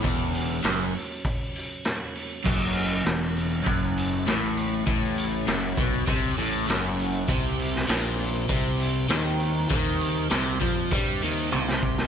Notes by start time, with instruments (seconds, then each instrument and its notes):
Already playing: tonewheel organ F#3 C#4 F#4 C#5
0.02 fingered electric bass E1, overdriven electric guitar E2, kick, open hi-hat
0.35 open hi-hat
0.63 fingered electric bass F#1, overdriven electric guitar F#2, snare, open hi-hat
0.94 open hi-hat
1.25 kick, open hi-hat
1.55 open hi-hat
1.85 snare, open hi-hat
2.16 open hi-hat
2.44 fingered electric bass F#1, overdriven electric guitar F#2, tonewheel organ E5, kick, crash
2.76 open hi-hat
3.04 fingered electric bass E1, overdriven electric guitar E2, snare, open hi-hat
3.37 open hi-hat
3.64 fingered electric bass F#1, overdriven electric guitar F#2, kick, open hi-hat
3.97 open hi-hat
4.26 fingered electric bass A1, overdriven electric guitar A2, snare, open hi-hat
4.57 open hi-hat
4.86 fingered electric bass A1, overdriven electric guitar A2, kick, open hi-hat
5.18 open hi-hat
5.46 fingered electric bass F#1, overdriven electric guitar F#2, snare, open hi-hat
5.77 fingered electric bass B1, overdriven electric guitar B2, kick, open hi-hat
6.07 fingered electric bass C2, overdriven electric guitar C3, kick, open hi-hat
6.38 fingered electric bass A1, overdriven electric guitar A2, open hi-hat
6.67 fingered electric bass F#1, overdriven electric guitar F#2, snare, open hi-hat
7.00 open hi-hat
7.27 fingered electric bass C2, overdriven electric guitar C3, tonewheel organ G3 C4 G4 C5, kick, open hi-hat
7.59 open hi-hat
7.75 snare
7.88 fingered electric bass A#1, overdriven electric guitar A#2, snare, open hi-hat
8.19 open hi-hat
8.49 fingered electric bass C2, overdriven electric guitar C3, kick, open hi-hat
8.80 open hi-hat
9.09 fingered electric bass D#2, overdriven electric guitar D#3, snare, open hi-hat
9.40 open hi-hat
9.69 fingered electric bass D#2, overdriven electric guitar D#3, kick, open hi-hat
10.01 open hi-hat
10.30 fingered electric bass C2, overdriven electric guitar C3, snare, open hi-hat
10.60 fingered electric bass F2, overdriven electric guitar F3, kick, open hi-hat
10.91 fingered electric bass G2, overdriven electric guitar G3, kick, open hi-hat
11.22 fingered electric bass D#2, overdriven electric guitar D#3, open hi-hat
11.52 fingered electric bass C2, overdriven electric guitar C3, high tom
11.68 snare
11.83 kick
11.98 snare